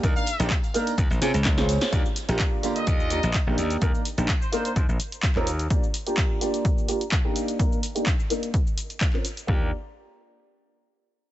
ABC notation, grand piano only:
X:1
M:4/4
L:1/16
Q:"Swing 16ths" 1/4=127
K:Eb
V:1 name="Grand piano"
[B,DEB] z2 [B,DEG] z2 [B,DEB] z3 [C_DFA] z2 [CDFA]3 | [B,DFG] z2 [B,DFG]3 [D,B,FG]4 [B,DFG] z2 [B,DEG]3 | [B,DEB] z2 [B,DEG] z2 [B,DEB] z6 [C_DFB] z2 | [B,DFG] z2 [B,DFG]3 [B,DFG]4 [B,DFG] z2 [B,DEG]3 |
[B,DEB] z2 [B,DEG] z2 [B,DEB] z6 [C_DFB] z2 | [B,DFG]2 z12 z2 |]